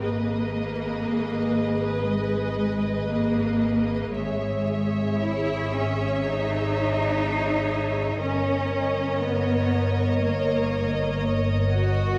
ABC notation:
X:1
M:4/4
L:1/8
Q:1/4=59
K:G#m
V:1 name="Violin section"
d8 | e8 | d8 |]
V:2 name="Violin section"
B8 | c8 | c8 |]
V:3 name="Viola section"
G8 | G8 | A8 |]
V:4 name="Cello section"
A,4 G,2 A,2 | G,2 E C D4 | C2 B,2 A,2 z F |]
V:5 name="Double bass section" clef=bass
G,,,8 | G,,,8 | =G,,,8 |]